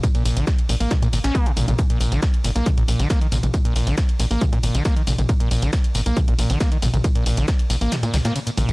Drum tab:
RD |xxxxxxxxxxxxxxxx|xxxxxxxxxxxxxxxx|xxxxxxxxxxxxxxxx|xxxxxxxxxxxxxxxx|
HH |xxoxxxooxxoxxxox|xxoxxxoxxxoxxxox|xxoxxxooxxoxxxox|xxoxxxoxxxoxxxox|
TB |xxxxx-xxxxxxx-xx|x-xxx-xxx-xxx-xx|x-xxx-xxx-xxx-xx|x-xxx-xxx-xxx-xx|
SH |x-x-x-x-x-xx-xx-|x-x-x-x-x-x-x-x-|x-x-x-x-x-x-x-x-|x-x-x-x-x-x-x-x-|
SD |----o---o--o----|----o--o----o---|----o-------o---|----o-------o---|
T2 |--------o-----oo|--------o-----oo|--------o-----oo|--------o-----oo|
BD |o---o---o---o---|o---o---o---o---|o---o---o---o---|o---o---o---o---|

RD |xxxxxxxxxxxxxxxx|
HH |xxoxxxooxxoxxxox|
TB |x-xxx-xxxxxxxxxx|
SH |x-x-x-x-x-xx-xx-|
SD |----o---o-oo----|
T2 |--------o-o---oo|
BD |o---o-----------|